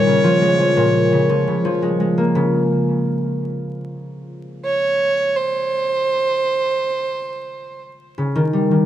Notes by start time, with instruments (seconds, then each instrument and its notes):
Already playing: harp A#2, violin C#5
0.06 harp C#3
0.24 harp F3
0.41 harp G#3
0.59 harp F3
0.77 harp A#2
1.12 harp C#3
1.29 harp F3
1.47 harp C#3
1.65 harp F3
1.82 harp G#3
2.00 harp G#3
2.18 harp A#3
2.35 harp C#3
4.65 violin C#5
5.36 violin C5
8.18 harp C#3
8.35 harp D#3
8.53 harp G3
8.71 harp D#3